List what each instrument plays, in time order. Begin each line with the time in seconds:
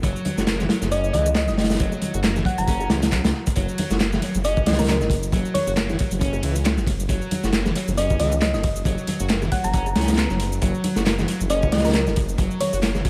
0.03 detuned saw bass F#1, distorted electric guitar F#3, kick, closed hi-hat, shaker
0.16 shaker
0.25 closed hi-hat, high conga, low conga
0.38 detuned saw bass F#1, distorted electric guitar F#4, snare, high bongo, shaker
0.47 distorted electric guitar A#3, snare, clap, closed hi-hat, shaker
0.60 distorted electric guitar E3, snare, high bongo, low conga, shaker
0.69 distorted electric guitar F#3, snare, closed hi-hat
0.82 detuned saw bass F#1, snare, high conga, shaker
0.91 distorted electric guitar C#4, synth pluck D#5, closed hi-hat, shaker
1.04 shaker
1.13 detuned saw bass C#2, distorted electric guitar E3, synth pluck D#5, closed hi-hat, low conga
1.26 high bongo, shaker
1.35 distorted electric guitar F#3, synth pluck D#5, snare, clap, closed hi-hat, shaker
1.47 detuned saw bass F#1, synth pluck D#5, snare, high conga, shaker
1.58 snare, closed hi-hat
1.64 snare, closed hi-hat
1.70 snare, closed hi-hat, shaker
1.75 snare, closed hi-hat
1.79 detuned saw bass F#1, distorted electric guitar F#3, kick, closed hi-hat, shaker
1.92 high bongo, shaker
2.02 closed hi-hat, high conga, low conga
2.14 detuned saw bass F#1, distorted electric guitar F#4, high bongo, shaker
2.24 distorted electric guitar A#3, snare, clap, closed hi-hat, shaker
2.36 distorted electric guitar E3, snare, high bongo, low conga, shaker
2.45 distorted electric guitar F#3, synth pluck F#5, kick, closed hi-hat
2.58 detuned saw bass F#1, synth pluck A#5, closed hi-hat, high conga, shaker
2.68 distorted electric guitar C#4, kick, closed hi-hat, shaker
2.80 high bongo, shaker
2.90 detuned saw bass C#2, distorted electric guitar E3, snare, closed hi-hat
3.02 snare, closed hi-hat, shaker
3.12 distorted electric guitar F#3, kick, clap, closed hi-hat, shaker
3.24 detuned saw bass C#2, snare, closed hi-hat, high conga, shaker
3.34 snare
3.46 kick, closed hi-hat, shaker
3.56 detuned saw bass F#1, distorted electric guitar F#3, kick, closed hi-hat, shaker
3.68 shaker
3.78 closed hi-hat, ride, high conga, low conga
3.90 detuned saw bass F#1, distorted electric guitar F#4, snare, high bongo, shaker
4.00 distorted electric guitar A#3, snare, clap, closed hi-hat, shaker
4.12 distorted electric guitar E3, snare, high bongo, low conga, shaker
4.22 distorted electric guitar F#3, closed hi-hat, ride
4.35 detuned saw bass F#1, high conga, shaker
4.44 distorted electric guitar C#4, synth pluck D#5, closed hi-hat, shaker
4.57 kick, shaker
4.66 detuned saw bass C#2, distorted electric guitar E3, synth pluck D#5, snare, closed hi-hat, ride, low conga
4.73 snare, closed hi-hat
4.79 synth pluck A#4, snare, closed hi-hat, high bongo, shaker
4.84 snare, closed hi-hat
4.88 distorted electric guitar F#3, synth pluck A#4, snare, clap, closed hi-hat, shaker
5.01 detuned saw bass F#1, snare, high conga, shaker
5.10 kick, closed hi-hat, ride
5.23 shaker
5.32 detuned saw bass F#1, distorted electric guitar F#3, kick, closed hi-hat, shaker
5.45 shaker
5.54 synth pluck C#5, closed hi-hat, ride, high conga, low conga
5.67 detuned saw bass F#1, distorted electric guitar F#4, high bongo, shaker
5.77 distorted electric guitar A#3, snare, clap, closed hi-hat, shaker
5.89 distorted electric guitar E3, snare, high bongo, low conga, shaker
5.99 distorted electric guitar F#3, kick, closed hi-hat, ride
6.11 detuned saw bass F#1, closed hi-hat, high conga, shaker
6.21 distorted electric guitar C#4, kick, closed hi-hat, shaker
6.33 high bongo, shaker
6.43 detuned saw bass C#2, distorted electric guitar E3, closed hi-hat, ride
6.56 closed hi-hat, shaker
6.65 distorted electric guitar F#3, snare, clap, closed hi-hat, ride, shaker
6.77 detuned saw bass F#1, snare, high conga, shaker
6.87 kick, closed hi-hat, ride
7.00 shaker
7.09 detuned saw bass F#1, distorted electric guitar F#3, kick, closed hi-hat, shaker
7.22 shaker
7.31 closed hi-hat, ride, high conga, low conga
7.43 detuned saw bass F#1, distorted electric guitar F#4, snare, high bongo, shaker
7.53 distorted electric guitar A#3, snare, clap, closed hi-hat, shaker
7.65 distorted electric guitar E3, snare, high bongo, low conga, shaker
7.75 distorted electric guitar F#3, closed hi-hat, ride
7.88 detuned saw bass F#1, high conga, shaker
7.97 distorted electric guitar C#4, synth pluck D#5, closed hi-hat, shaker
8.10 kick, shaker
8.19 detuned saw bass C#2, distorted electric guitar E3, synth pluck D#5, closed hi-hat, ride, low conga
8.31 high bongo, shaker
8.42 distorted electric guitar F#3, synth pluck D#5, snare, clap, closed hi-hat, shaker
8.53 detuned saw bass F#1, synth pluck D#5, snare, high conga, shaker
8.63 kick, closed hi-hat, ride
8.76 shaker
8.85 detuned saw bass F#1, distorted electric guitar F#3, kick, closed hi-hat, shaker
8.98 shaker
9.07 closed hi-hat, ride, high conga, low conga
9.20 detuned saw bass F#1, distorted electric guitar F#4, high bongo, shaker
9.29 distorted electric guitar A#3, snare, clap, closed hi-hat, shaker
9.42 distorted electric guitar E3, snare, high bongo, low conga, shaker
9.52 distorted electric guitar F#3, synth pluck F#5, kick, closed hi-hat, ride
9.64 detuned saw bass F#1, synth pluck A#5, closed hi-hat, high conga, shaker
9.73 distorted electric guitar C#4, kick, closed hi-hat, shaker
9.86 high bongo, shaker
9.95 detuned saw bass C#2, distorted electric guitar C#4, snare, closed hi-hat, ride
10.01 snare, closed hi-hat
10.08 snare, closed hi-hat, shaker
10.13 snare, closed hi-hat
10.18 distorted electric guitar B3, snare, clap, closed hi-hat, ride, shaker
10.30 detuned saw bass F#1, distorted electric guitar F#3, snare, high conga, shaker
10.40 closed hi-hat, ride
10.52 shaker
10.62 detuned saw bass F#1, distorted electric guitar F#3, kick, closed hi-hat, shaker
10.74 shaker
10.84 closed hi-hat, ride, high conga, low conga
10.96 detuned saw bass F#1, distorted electric guitar F#4, snare, high bongo, shaker
11.06 distorted electric guitar A#3, snare, clap, closed hi-hat, shaker
11.18 distorted electric guitar E3, snare, high bongo, low conga, shaker
11.28 distorted electric guitar F#3, closed hi-hat, ride
11.41 detuned saw bass F#1, high conga, shaker
11.50 distorted electric guitar C#4, synth pluck D#5, closed hi-hat, shaker
11.62 kick, shaker
11.72 detuned saw bass C#2, distorted electric guitar E3, synth pluck D#5, snare, closed hi-hat, ride, low conga
11.78 snare, closed hi-hat
11.84 synth pluck A#4, snare, closed hi-hat, high bongo, shaker
11.89 snare, closed hi-hat
11.93 distorted electric guitar F#3, synth pluck A#4, snare, clap, closed hi-hat, shaker
12.07 detuned saw bass F#1, snare, high conga, shaker
12.16 kick, closed hi-hat, ride
12.29 shaker
12.38 detuned saw bass F#1, distorted electric guitar F#3, kick, closed hi-hat, shaker
12.51 shaker
12.60 synth pluck C#5, closed hi-hat, ride, high conga, low conga
12.73 detuned saw bass F#1, distorted electric guitar F#4, high bongo, shaker
12.82 distorted electric guitar A#3, snare, clap, closed hi-hat, shaker
12.95 distorted electric guitar E3, snare, high bongo, low conga, shaker
13.05 distorted electric guitar F#3, kick, closed hi-hat, ride